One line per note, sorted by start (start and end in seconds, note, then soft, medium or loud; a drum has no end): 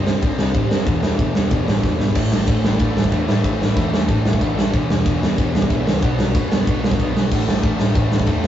0.00 0.14 G1 medium
0.00 0.19 C3 medium
0.00 0.22 G3 medium
0.00 0.23 C4 loud
0.06 0.21 C3 medium
0.06 0.22 G3 medium
0.06 0.22 C4 loud
0.06 snare loud
0.22 0.35 C2 loud
0.22 0.38 C3 loud
0.22 0.37 G3 loud
0.22 0.37 C4 loud
0.22 kick loud
0.22 ride medium
0.39 0.50 C2 medium
0.39 0.53 C3 medium
0.39 0.54 G3 medium
0.39 0.54 C4 loud
0.39 snare loud
0.54 0.67 A1 medium
0.54 0.69 C3 medium
0.54 0.70 G3 medium
0.54 0.69 C4 loud
0.54 kick loud
0.54 ride medium
0.70 0.82 F#2 medium
0.70 0.86 C3 medium
0.70 0.86 G3 medium
0.70 0.85 C4 medium
0.70 snare loud
0.86 1.11 E1 medium
0.86 1.02 E2 loud
0.86 1.02 B2 loud
0.86 1.01 E3 loud
0.86 kick loud
0.86 ride medium
1.02 1.18 E2 medium
1.02 1.18 B2 medium
1.02 1.19 E3 medium
1.02 snare loud
1.19 1.31 E1 loud
1.19 1.36 E2 medium
1.19 1.35 B2 medium
1.19 1.34 E3 medium
1.19 kick loud
1.19 ride medium
1.35 1.47 E1 medium
1.35 1.50 E2 medium
1.35 1.51 B2 medium
1.35 1.51 E3 medium
1.35 snare loud
1.51 1.63 E1 loud
1.51 1.67 E2 loud
1.51 1.66 B2 loud
1.51 1.66 E3 loud
1.51 kick loud
1.51 ride medium
1.67 1.79 A1 medium
1.67 1.81 E2 medium
1.67 1.82 B2 medium
1.67 1.82 E3 loud
1.67 snare loud
1.83 1.95 E1 medium
1.83 1.99 E2 medium
1.83 1.99 B2 medium
1.83 1.98 E3 medium
1.83 kick loud
1.83 snare medium
1.99 2.12 G#1 medium
1.99 2.15 E2 medium
1.99 2.15 B2 medium
1.99 2.15 E3 loud
1.99 snare loud
2.15 2.31 A1 medium
2.15 2.48 A2 loud
2.15 2.48 E3 loud
2.15 2.49 A3 loud
2.15 kick loud
2.15 crash loud
2.32 2.47 A1 medium
2.32 snare loud
2.47 2.63 A1 loud
2.47 2.66 A2 medium
2.47 2.65 E3 medium
2.47 2.65 A3 loud
2.47 kick loud
2.47 ride medium
2.64 2.79 A1 medium
2.64 2.80 A2 medium
2.64 2.81 E3 medium
2.64 2.80 A3 loud
2.64 snare loud
2.79 2.95 A1 loud
2.79 3.10 A2 loud
2.79 3.12 E3 loud
2.79 3.11 A3 loud
2.79 kick loud
2.79 ride medium
2.97 3.11 A1 medium
2.97 snare loud
3.04 kick loud
3.12 3.27 E2 loud
3.12 3.28 A2 medium
3.12 3.28 E3 loud
3.12 3.27 A3 loud
3.12 kick loud
3.12 ride medium
3.28 3.43 A2 medium
3.28 3.42 A2 medium
3.28 3.43 E3 medium
3.28 3.43 A3 loud
3.28 snare loud
3.43 3.59 A1 medium
3.43 3.76 A2 loud
3.43 3.77 E3 loud
3.43 3.76 A3 loud
3.43 kick loud
3.43 ride medium
3.61 3.76 A1 medium
3.61 snare loud
3.77 4.07 E2 loud
3.77 3.93 A2 medium
3.77 3.93 E3 medium
3.77 3.91 A3 medium
3.77 kick loud
3.77 ride medium
3.93 4.08 A2 medium
3.93 4.08 E3 medium
3.93 4.09 A3 loud
3.93 snare loud
4.08 4.39 A1 loud
4.08 4.39 A2 loud
4.08 4.40 E3 loud
4.08 4.40 A3 loud
4.08 kick loud
4.08 ride medium
4.26 snare loud
4.33 kick loud
4.40 4.56 A1 loud
4.40 4.56 A2 loud
4.40 4.55 E3 medium
4.40 4.55 A3 medium
4.40 kick loud
4.40 ride medium
4.56 4.72 A1 medium
4.56 4.72 A2 medium
4.56 4.72 E3 medium
4.56 4.72 A3 loud
4.56 snare loud
4.73 4.89 E1 loud
4.73 5.04 E2 medium
4.73 5.04 B2 loud
4.73 5.04 E3 loud
4.73 kick loud
4.73 ride medium
4.89 5.04 E1 medium
4.89 snare loud
5.05 5.21 E1 loud
5.05 5.21 E2 medium
5.05 5.21 B2 medium
5.05 5.20 E3 loud
5.05 kick loud
5.05 ride medium
5.21 5.37 E1 medium
5.21 5.37 E2 medium
5.21 5.37 B2 medium
5.21 5.38 E3 loud
5.21 snare loud
5.38 5.53 E1 loud
5.38 5.70 E2 loud
5.38 5.70 B2 loud
5.38 5.71 E3 loud
5.38 kick loud
5.38 ride medium
5.55 5.69 E1 medium
5.55 snare loud
5.62 kick medium
5.70 5.85 B1 medium
5.70 5.86 E2 medium
5.70 5.86 B2 medium
5.70 5.85 E3 medium
5.70 kick loud
5.70 ride medium
5.86 6.02 C#2 medium
5.86 6.02 E2 medium
5.86 6.02 B2 medium
5.86 6.01 E3 loud
5.86 snare loud
6.02 6.18 B1 medium
6.02 6.35 B2 loud
6.02 6.35 F#3 loud
6.02 6.35 B3 loud
6.02 kick loud
6.02 ride medium
6.19 6.34 B1 medium
6.19 snare loud
6.35 6.65 F#2 medium
6.35 6.51 B2 medium
6.35 6.51 F#3 medium
6.35 6.51 B3 medium
6.35 kick loud
6.35 ride medium
6.52 6.66 B2 medium
6.52 6.67 F#3 medium
6.52 6.67 B3 loud
6.52 snare loud
6.67 6.98 B1 loud
6.67 6.98 B2 loud
6.67 6.98 F#3 loud
6.67 6.98 B3 loud
6.67 kick loud
6.67 ride medium
6.84 snare loud
6.92 kick loud
6.99 7.15 B1 medium
6.99 7.15 B2 medium
6.99 7.14 F#3 loud
6.99 7.13 B3 medium
6.99 kick medium
6.99 ride medium
7.15 7.31 B1 medium
7.15 7.30 B2 medium
7.15 7.30 F#3 medium
7.15 7.30 B3 medium
7.15 snare loud
7.30 7.47 A1 loud
7.30 7.63 A2 loud
7.30 7.64 E3 loud
7.30 7.64 A3 loud
7.30 kick loud
7.30 crash loud
7.48 7.63 A1 medium
7.48 snare loud
7.63 7.78 A1 medium
7.63 7.80 A2 medium
7.63 7.80 E3 medium
7.63 7.80 A3 medium
7.63 kick loud
7.63 ride medium
7.79 7.94 A1 medium
7.79 7.94 A2 medium
7.79 7.95 E3 medium
7.79 7.95 A3 loud
7.79 snare loud
7.95 8.10 A1 medium
7.95 8.27 A2 loud
7.95 8.27 E3 loud
7.95 8.27 A3 loud
7.95 kick loud
7.95 ride medium
8.11 8.27 A1 medium
8.11 snare loud
8.20 kick loud
8.26 8.43 E2 medium
8.26 8.45 A2 medium
8.26 8.45 E3 medium
8.26 8.44 A3 medium
8.26 kick medium
8.26 ride medium
8.42 8.47 A2 medium
8.42 8.47 E3 medium
8.42 8.47 A3 medium